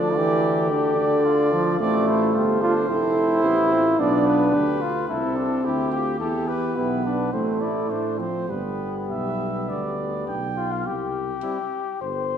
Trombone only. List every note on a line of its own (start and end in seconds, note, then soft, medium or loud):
0.00 0.15 F3 medium
0.16 0.72 E3 medium
0.70 0.97 D3 medium
0.97 1.54 D3 medium
1.53 1.80 F3 medium
1.80 2.60 A3 medium
2.62 2.74 F4 medium
2.89 4.01 E4 medium
4.00 4.82 D4 medium
5.10 6.17 C4 medium
6.77 7.30 B3 medium
7.34 8.18 A3 medium
8.19 8.51 F3 soft
8.49 10.28 G3 soft
11.43 11.59 G3 soft